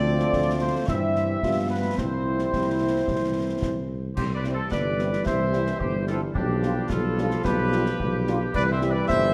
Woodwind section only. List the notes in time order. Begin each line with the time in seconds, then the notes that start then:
Already playing: D5
0.61 C5
0.88 E5
1.70 B4
1.98 C5
4.16 G4
4.34 B4
4.54 A4
4.71 B4
5.26 C5
5.80 G4
6.08 F4
6.34 D4
6.89 F4
7.44 G4
8.54 B4
8.71 C5
8.90 B4
9.08 C5